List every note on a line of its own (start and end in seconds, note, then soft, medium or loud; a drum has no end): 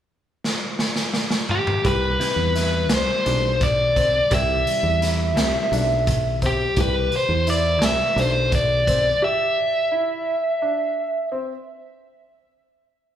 0.44 snare medium
0.79 snare medium
0.96 snare medium
1.14 snare medium
1.30 snare medium
1.49 1.86 G4 medium
1.49 mid tom medium
1.67 mid tom loud
1.84 2.16 C2 medium
1.84 2.24 G4 medium
1.84 2.94 B4 loud
1.84 kick medium
1.84 closed hi-hat medium
2.20 3.19 G3 medium
2.20 3.19 C4 medium
2.20 3.18 E4 medium
2.20 snare soft
2.20 closed hi-hat medium
2.36 2.90 E2 medium
2.55 2.95 E4 medium
2.55 snare soft
2.55 closed hi-hat medium
2.90 3.06 C2 medium
2.90 snare loud
2.90 closed hi-hat medium
2.95 3.65 C5 medium
3.26 4.21 B1 medium
3.26 3.50 G3 medium
3.26 3.50 C4 medium
3.26 3.66 D4 medium
3.26 3.50 E4 medium
3.26 closed hi-hat medium
3.61 4.34 D5 medium
3.61 kick medium
3.61 closed hi-hat medium
3.96 4.16 C4 medium
3.96 kick medium
3.96 closed hi-hat medium
4.30 4.63 C2 medium
4.30 5.29 G3 medium
4.30 5.29 C4 medium
4.30 5.29 E4 medium
4.30 4.71 G4 medium
4.30 6.39 E5 loud
4.30 kick medium
4.30 closed hi-hat medium
4.67 closed hi-hat medium
4.83 5.37 E2 medium
5.02 5.41 E4 medium
5.02 snare soft
5.02 closed hi-hat medium
5.36 5.53 C2 medium
5.36 5.86 G3 medium
5.36 5.86 C4 medium
5.36 5.86 E4 medium
5.36 snare loud
5.36 closed hi-hat medium
5.72 6.66 B1 medium
5.72 6.12 D4 medium
5.72 closed hi-hat medium
6.07 kick medium
6.07 closed hi-hat medium
6.42 6.62 C4 medium
6.42 kick medium
6.42 closed hi-hat soft
6.46 6.80 G4 medium
6.76 7.08 C2 medium
6.76 7.17 G4 medium
6.76 kick loud
6.76 closed hi-hat medium
6.80 7.15 B4 medium
7.12 closed hi-hat medium
7.16 7.47 C5 medium
7.29 7.81 E2 medium
7.47 7.87 E4 medium
7.47 7.85 D5 medium
7.47 closed hi-hat medium
7.81 7.97 C2 medium
7.81 8.20 E5 medium
7.81 snare loud
7.81 closed hi-hat medium
8.16 9.11 B1 medium
8.16 8.56 D4 medium
8.16 8.51 C5 medium
8.16 closed hi-hat medium
8.52 9.24 D5 medium
8.52 kick medium
8.52 closed hi-hat medium
8.87 9.07 C4 medium
8.87 kick medium
8.87 closed hi-hat medium
9.22 9.62 G4 medium
9.22 11.29 E5 medium
9.92 10.31 E4 medium
10.62 11.01 D4 medium
11.32 11.51 C4 medium